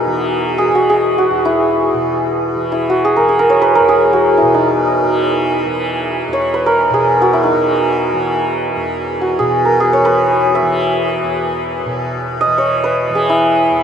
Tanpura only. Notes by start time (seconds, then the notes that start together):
Already playing: E2 B2 E3
0.07 E3
0.69 E3
1.31 E2
1.94 B2
2.56 E3
3.18 E3
3.80 E2
4.42 B2
5.03 E3
5.65 E3
6.28 E2
6.90 B2
7.53 E3
8.13 E3
8.76 E2
9.40 B2
10.00 E3
10.62 E3
11.24 E2
11.86 B2
12.47 E3
13.10 E3
13.72 E2